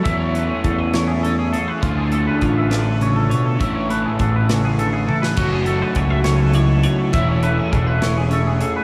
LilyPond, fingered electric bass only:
\new Staff \with { instrumentName = "Fingered electric bass" } { \clef bass \time 6/8 \key a \major \tempo 4. = 68 e,4 e,2 | d,4 a,,2 | a,,4 a,,2 | fis,,4 cis,2 |
e,,4 e,,2 | }